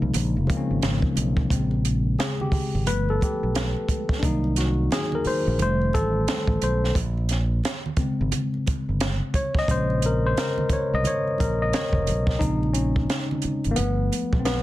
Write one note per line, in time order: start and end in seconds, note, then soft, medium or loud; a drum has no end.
0.00 0.13 C2 medium
0.00 0.47 C#3 medium
0.00 0.48 F3 medium
0.00 0.48 G#3 medium
0.00 0.49 A#3 medium
0.00 1.52 D#4 medium
0.14 0.34 A#1 loud
0.14 closed hi-hat medium
0.14 muted conga soft
0.14 high conga medium
0.14 low conga medium
0.37 0.47 F1 medium
0.47 1.41 C#3 medium
0.47 1.41 F3 medium
0.47 1.41 G#3 medium
0.47 1.42 A#3 medium
0.47 0.57 C4 medium
0.47 kick medium
0.47 closed hi-hat medium
0.47 high conga medium
0.57 1.46 C#4 medium
0.71 0.81 G#1 medium
0.82 1.02 G#1 medium
0.82 snare loud
0.82 closed hi-hat medium
0.82 high conga soft
1.02 kick medium
1.02 muted conga soft
1.16 1.48 B1 medium
1.16 closed hi-hat medium
1.16 high conga medium
1.37 kick medium
1.50 2.15 A#1 loud
1.50 1.99 C#3 medium
1.50 2.00 G#3 soft
1.50 2.00 C4 medium
1.50 kick medium
1.50 closed hi-hat medium
1.71 muted conga soft
1.85 closed hi-hat medium
2.19 2.41 G#4 medium
2.19 snare loud
2.19 closed hi-hat medium
2.19 muted conga soft
2.40 2.88 G4 medium
2.40 muted conga soft
2.40 low conga medium
2.52 muted fingered electric bass stroke soft
2.52 kick medium
2.52 open hi-hat soft
2.52 high conga medium
2.52 low conga medium
2.75 2.87 G#1 medium
2.86 3.18 G1 loud
2.86 4.19 F3 soft
2.86 4.19 A3 soft
2.86 4.19 B3 medium
2.86 3.09 B4 loud
2.86 closed hi-hat medium
2.86 high conga medium
2.86 low conga medium
3.09 3.22 A4 medium
3.09 muted conga soft
3.21 3.54 G4 medium
3.21 kick medium
3.21 closed hi-hat medium
3.21 high conga medium
3.43 3.74 B1 medium
3.55 snare loud
3.55 closed hi-hat medium
3.55 muted conga soft
3.55 high conga soft
3.77 muted conga soft
3.89 kick medium
3.89 closed hi-hat medium
3.89 high conga medium
4.09 kick medium
4.09 snare soft
4.19 4.87 C2 medium
4.19 4.24 D4 medium
4.19 kick loud
4.19 muted conga soft
4.23 4.72 D#3 medium
4.23 4.73 F#3 soft
4.23 4.73 A#3 medium
4.23 4.59 D#4 medium
4.23 closed hi-hat medium
4.44 muted conga soft
4.56 4.92 F#4 medium
4.56 snare soft
4.56 closed hi-hat medium
4.91 5.12 G#4 medium
4.91 snare loud
4.91 closed hi-hat medium
4.91 muted conga soft
5.12 5.26 A#4 medium
5.12 muted conga soft
5.12 low conga medium
5.24 5.61 C5 medium
5.24 muted fingered electric bass stroke soft
5.24 open hi-hat soft
5.24 high conga medium
5.24 low conga medium
5.47 5.58 A#1 medium
5.59 5.90 F1 loud
5.59 6.92 D#3 medium
5.59 6.93 G3 soft
5.59 6.93 A3 medium
5.59 5.96 C5 medium
5.59 closed hi-hat medium
5.59 muted conga soft
5.59 high conga medium
5.59 low conga medium
5.82 muted conga soft
5.93 6.25 A1 medium
5.93 6.64 A4 medium
5.93 kick medium
5.93 closed hi-hat medium
5.93 high conga medium
6.27 snare loud
6.27 closed hi-hat medium
6.27 high conga soft
6.47 6.60 A1 medium
6.47 kick medium
6.47 muted conga soft
6.62 6.93 B1 medium
6.62 6.94 C5 medium
6.62 closed hi-hat medium
6.62 high conga medium
6.84 snare soft
6.95 7.60 A#1 loud
6.95 kick loud
6.95 closed hi-hat medium
6.95 muted conga soft
7.17 muted conga soft
7.29 snare soft
7.29 closed hi-hat medium
7.64 snare loud
7.64 closed hi-hat medium
7.64 muted conga soft
7.86 low conga medium
7.97 8.47 C#3 medium
7.97 8.47 G#3 soft
7.97 8.47 C4 medium
7.97 muted fingered electric bass stroke soft
7.97 kick medium
7.97 closed hi-hat soft
7.97 high conga medium
7.97 low conga medium
8.21 8.31 G#1 medium
8.32 closed hi-hat medium
8.32 muted conga soft
8.32 high conga medium
8.32 low conga medium
8.54 muted conga soft
8.67 muted fingered electric bass stroke soft
8.67 kick medium
8.67 closed hi-hat medium
8.67 high conga medium
8.89 9.19 G1 medium
9.00 snare loud
9.00 closed hi-hat medium
9.00 muted conga soft
9.00 high conga soft
9.34 9.45 C#5 loud
9.34 kick medium
9.34 closed hi-hat medium
9.34 high conga medium
9.55 kick medium
9.55 snare soft
9.59 9.70 D#5 loud
9.68 10.33 A#1 loud
9.68 12.37 C#3 medium
9.68 12.38 G#3 medium
9.68 12.38 C#4 medium
9.68 10.01 C5 loud
9.68 kick loud
9.68 closed hi-hat medium
9.68 muted conga soft
9.90 muted conga soft
10.02 10.26 A#4 medium
10.02 closed hi-hat medium
10.27 10.38 C5 medium
10.37 10.69 A#4 medium
10.37 snare loud
10.37 closed hi-hat medium
10.37 muted conga soft
10.58 muted conga soft
10.58 low conga medium
10.70 10.94 C#5 medium
10.70 muted fingered electric bass stroke soft
10.70 kick medium
10.70 closed hi-hat medium
10.70 high conga medium
10.70 low conga medium
10.94 11.04 C2 medium
10.94 11.06 D#5 loud
11.04 11.38 C#5 loud
11.04 closed hi-hat medium
11.04 muted conga soft
11.04 high conga medium
11.04 low conga medium
11.28 muted conga soft
11.38 11.71 A#1 medium
11.38 11.62 A#4 medium
11.38 kick medium
11.38 closed hi-hat medium
11.38 high conga medium
11.62 11.74 D#5 medium
11.73 12.37 C#5 medium
11.73 snare loud
11.73 closed hi-hat medium
11.73 muted conga soft
11.73 high conga soft
11.93 12.10 F1 loud
11.93 kick medium
11.93 muted conga soft
12.07 12.39 B1 medium
12.07 closed hi-hat medium
12.07 high conga medium
12.27 kick medium
12.27 snare soft
12.39 13.05 A#1 loud
12.39 13.39 C#3 medium
12.39 13.39 G#3 soft
12.39 13.39 C4 medium
12.39 12.72 D#4 medium
12.39 kick loud
12.39 closed hi-hat medium
12.39 muted conga soft
12.63 muted conga soft
12.73 13.38 C#4 medium
12.73 closed hi-hat medium
12.96 kick medium
13.09 snare medium
13.09 closed hi-hat medium
13.09 muted conga soft
13.31 muted conga soft
13.31 low conga medium
13.42 muted fingered electric bass stroke soft
13.42 closed hi-hat soft
13.42 high conga medium
13.42 low conga medium
13.64 13.77 G#1 medium
13.64 closed hi-hat soft
13.71 13.77 A#3 medium
13.76 14.09 G1 loud
13.76 14.63 F3 medium
13.76 14.63 A3 soft
13.76 13.78 B3 medium
13.76 14.44 B3 medium
13.76 closed hi-hat medium
13.76 high conga medium
13.76 low conga medium
14.12 muted fingered electric bass stroke soft
14.12 closed hi-hat medium
14.12 high conga medium
14.33 14.63 B1 medium
14.33 kick medium
14.39 14.45 C4 medium
14.45 14.63 B3 medium
14.45 snare loud
14.45 closed hi-hat medium
14.45 muted conga soft
14.45 high conga soft